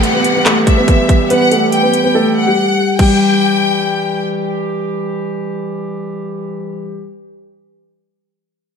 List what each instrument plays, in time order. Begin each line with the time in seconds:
Already playing: woodwind section E3 G3 G4, felt piano A3 A4, downlifter
0.03 violin section F#5, closed hi-hat
0.14 felt piano B3 B4
0.24 closed hi-hat
0.35 felt piano B3 B4
0.46 felt piano A3 A4, clap, closed hi-hat
0.67 violin section E5, kick, closed hi-hat
0.78 felt piano B3 B4
0.88 kick, closed hi-hat
1.09 kick, closed hi-hat
1.30 felt piano B3 B4, violin section F#5, closed hi-hat
1.52 felt piano A3 A4, closed hi-hat
1.72 violin section G5, closed hi-hat
1.83 felt piano B3 B4
1.94 closed hi-hat
2.04 felt piano B3 B4
2.15 felt piano A3 A4
2.36 violin section F#5
2.46 felt piano G3 G4
2.99 woodwind section E3 G3 G4, felt piano G3, violin section G5, kick, crash